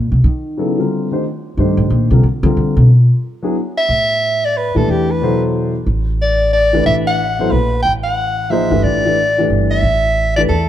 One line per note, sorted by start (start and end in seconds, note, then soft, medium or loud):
0.00 0.11 A#2 medium
0.12 0.23 C3 medium
0.24 0.74 D#3 medium
0.57 0.76 C#3 medium
0.57 0.77 F#3 soft
0.57 0.77 B3 soft
0.57 0.77 E4 medium
0.57 0.77 A4 medium
0.78 1.07 D3 soft
0.78 1.08 G3 soft
0.78 1.07 C4 soft
0.78 1.08 F4 soft
0.78 1.08 A#4 medium
1.11 1.23 D#3 medium
1.11 1.23 A3 soft
1.11 1.23 D4 soft
1.11 1.23 G4 soft
1.11 1.23 C5 medium
1.57 1.77 G2 medium
1.57 2.07 D#3 medium
1.57 2.07 A3 medium
1.57 2.07 D4 medium
1.57 2.08 G4 medium
1.57 2.08 C5 medium
1.77 1.89 A2 medium
1.90 2.10 A#2 medium
2.10 2.23 C3 medium
2.10 2.22 D3 medium
2.10 2.23 G3 medium
2.10 2.23 C4 medium
2.10 2.23 F4 soft
2.10 2.23 A#4 medium
2.23 2.42 D3 medium
2.43 2.87 D3 medium
2.43 2.55 D#3 loud
2.43 2.87 G3 medium
2.43 2.87 C4 medium
2.43 2.87 F4 medium
2.43 2.88 A#4 medium
2.57 2.76 D3 medium
2.77 3.07 B2 medium
3.42 3.54 F#3 medium
3.42 3.54 B3 medium
3.42 3.54 D4 medium
3.42 3.54 E4 medium
3.42 3.55 G#4 medium
3.78 4.46 E5 loud
3.89 4.71 A2 medium
4.45 4.58 D5 medium
4.57 4.78 B4 medium
4.75 4.87 A#2 medium
4.75 5.18 E3 medium
4.75 5.18 A3 medium
4.75 5.19 D4 medium
4.75 5.19 G4 medium
4.75 4.92 A4 medium
4.75 5.19 B4 medium
4.88 5.83 E2 medium
4.88 5.12 G4 medium
5.11 5.43 B4 medium
5.22 5.71 B2 medium
5.22 5.71 F#3 medium
5.22 5.72 E4 medium
5.22 5.71 A4 medium
5.22 5.72 C5 medium
5.86 6.82 A1 medium
6.22 6.52 D5 medium
6.53 6.84 D5 loud
6.73 7.16 E3 medium
6.73 7.16 A3 medium
6.73 7.17 D4 medium
6.73 7.17 G4 medium
6.73 7.17 B4 medium
6.86 7.48 A1 medium
6.86 6.95 E5 medium
7.07 7.52 F#5 loud
7.39 7.51 F#3 medium
7.39 7.51 B3 medium
7.39 7.51 E4 medium
7.39 7.51 A4 medium
7.39 7.51 C5 medium
7.51 7.83 A#1 medium
7.51 7.79 B4 medium
7.82 8.68 A1 medium
7.82 7.92 G5 medium
8.04 8.52 F#5 medium
8.50 8.69 F3 medium
8.50 8.69 A#3 medium
8.50 8.70 D#4 medium
8.50 8.70 G#4 medium
8.50 8.70 C5 medium
8.50 8.84 E5 medium
8.70 8.83 G1 medium
8.70 9.00 E3 medium
8.70 9.00 A3 medium
8.70 9.00 D4 medium
8.70 9.01 G4 medium
8.70 9.01 B4 medium
8.83 9.46 A1 medium
8.83 9.50 D5 medium
9.05 9.16 E3 medium
9.05 9.17 A3 soft
9.05 9.17 D4 soft
9.05 9.17 G4 medium
9.05 9.17 B4 medium
9.38 9.81 E3 medium
9.38 9.81 A3 medium
9.38 9.81 D4 medium
9.38 9.82 G4 medium
9.38 9.82 B4 medium
9.50 9.81 G1 medium
9.71 10.33 E5 medium
9.83 10.45 A1 medium
10.36 10.48 E3 medium
10.36 10.49 A3 medium
10.36 10.49 D4 medium
10.36 10.49 G4 medium
10.36 10.49 B4 medium
10.36 10.42 D5 medium
10.49 10.69 E2 medium
10.49 10.68 A4 medium